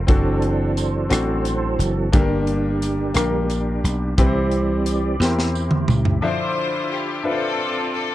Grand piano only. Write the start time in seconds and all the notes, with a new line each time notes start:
Already playing: C4 F4 A4 C5
0.07 C4 D4 F#4 A4
1.09 C4 D4 F#4 A4
2.12 G2 A#3 D4 G4 A4
2.21 A#4
3.14 A#3 D4 G4 A#4
4.18 C3 C4 E4 G4 B4
4.26 C5
5.21 C4 E4 G4 A#4
6.22 D3 F3 D4 C5 E5
7.23 D4 F4 B4 E5
7.32 C5